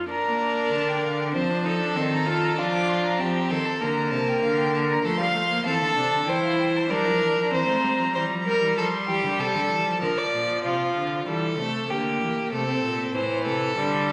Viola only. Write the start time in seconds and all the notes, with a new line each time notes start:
0.10 D4
1.35 C4
1.50 D4
1.65 D#4
1.80 D4
1.96 C4
2.26 F4
2.57 D4
3.19 C4
3.81 A#3
5.04 A3
5.19 G3
5.34 A3
5.49 A#3
5.65 C4
5.96 D4
6.27 E4
6.89 D4
7.51 C4
8.14 G3
10.02 F3
11.27 G3
11.58 A3
11.90 A#3
12.52 A3
12.68 C4
13.14 E3
13.77 G3